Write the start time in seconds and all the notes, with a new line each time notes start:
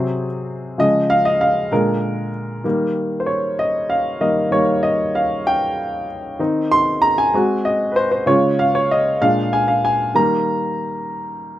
Already playing: C3 F#3 C4 G#4
0.78 C#3 F3 G#3 D#5
1.10 F5
1.25 D#5
1.41 F5
1.72 A#2 D3 G#3 A#4
2.64 D#3 G3 A#3
3.20 C5
3.26 C#5
3.59 D#5
3.90 F5
4.21 D#3 G3 A#3 D#5
4.51 D#3 G3 A#3 C#5
4.83 D#5
5.15 F5
5.47 G5
6.39 D#3 C4 D#4
6.72 C6
7.02 A#5
7.18 G#5
7.34 G#3 C4 F#4
7.65 D#5
7.92 B4
7.96 C5
8.12 C5
8.26 C#3 G#3 F4 C#5
8.59 F5
8.75 C#5
8.91 D#5
9.21 A#2 G#3 D4 F5
9.53 G#5
9.68 F5
9.85 G#5
10.14 D#3 G3 A#3 A#5